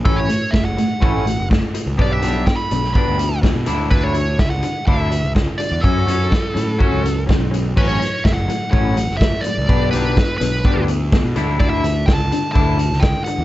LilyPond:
<<
  \new Staff \with { instrumentName = "Lead electric guitar" } { \time 4/4 \key d \major \tempo 4 = 125 a'16 cis''8. e''16 fis''8. fis''4 r4 | d''16 e''8. g''16 b''8. b''4 r4 | b'16 cis''8. e''16 fis''8. e''4 r8 d''8 | a'2. r4 |
b'16 cis''8. e''16 fis''8. fis''4 e''8 d''8~ | d''8 b'4 b'4 r4. | d''16 e''8. g''16 a''8. a''4 g''8 fis''8 | }
  \new Staff \with { instrumentName = "Clean electric guitar" } { \time 4/4 \key d \major <a, a cis'>8 <a, a>8 <a, a>8 <a, a>8 <a, a cis'>8 <a, a>8 <a, a>8 <a, a>8 | <b d' g'>8 <b d' g'>8 d'8 <b d'>8 <b d' g'>8 <b d'>8 <b d'>8 <d d' e'>8 | <d d' e'>8 <d d'>8 <d d'>8 <d d'>8 <d d' e'>8 <d d'>8 <d d'>8 <d d'>8 | <fis cis' fis'>8 <fis cis' fis'>8 <fis cis'>8 <fis cis'>8 <fis cis' fis'>8 <fis cis'>8 <fis cis'>8 <fis cis'>8 |
<a, fis cis'>8 <a, fis>8 <a, fis>8 <a, fis>8 <a, fis cis'>8 <a, fis>8 <a, fis>8 <a, fis>8 | <b d' g'>8 <b d' g'>8 <b d'>8 <b d'>8 <b d' g'>8 <b d'>8 <b d'>8 <d d' e'>8 | <d d' e'>8 <d d'>8 <d d'>8 <d d'>8 <d d' e'>8 <d d'>8 <d d'>8 <d d'>8 | }
  \new Staff \with { instrumentName = "Picked electric bass" } { \clef bass \time 4/4 \key d \major a,,8 r8 fis,,8 r8 a,,8. fis,,8 r8 cis,16 | b,,8 b,,8 r8 b,,8 r16 d,4 b,16 d,8~ | d,4 cis,8 r8 d,8. cis,8 r8 e,16 | fis,8 fis,8 r8 a,8 r16 cis,4 b,,8. |
a,,8 r8 fis,,8 r8 a,,8. fis,,8 r8 cis,16 | b,,8 b,,8 r8 b,,8 r16 d,4 b,16 d,8~ | d,4 cis,8 r8 d,8. cis,8 r8 e,16 | }
  \new DrumStaff \with { instrumentName = "Drums" } \drummode { \time 4/4 bd8 hh8 <bd sn>8 hh8 bd8 hh8 <bd sn>8 hh8 | bd8 hh8 <bd sn>8 hh16 sn16 bd8 hh8 <bd sn>8 hh8 | bd8 hh8 <bd sn>8 hh8 bd8 hh8 <bd sn>8 hh8 | bd8 hh8 <bd sn>8 hh8 bd8 hh8 <bd sn>8 hh8 |
<cymc bd>8 hh8 <bd sn>8 hh8 bd8 hh16 sn16 <bd sn>8 hh8 | bd8 hh8 <bd sn>8 hh8 bd8 hh8 <bd sn>8 hh8 | bd8 hh8 <bd sn>8 hh8 bd8 hh16 sn16 <bd sn>8 hh8 | }
>>